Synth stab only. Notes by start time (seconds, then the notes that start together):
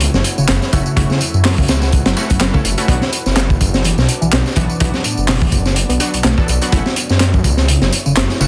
0.73 A3 C#4 E4 F#4
0.96 A3 C#4 E4 F#4
2.17 A3 C#4 E4 F#4
2.54 A3 C#4 E4 A4
2.78 A3 C#4 E4 F#4
2.88 F#3 B3 D4 F#4
4.56 F#3 B3 D4 F#4
4.80 F#3 B3 D4 F#4
6.00 F#3 B3 D4 F#4
6.37 F#3 B3 D4 A4
6.62 F#3 B3 D4 F#4
6.72 A3 C#4 E4 F#4
8.41 A3 C#4 E4 F#4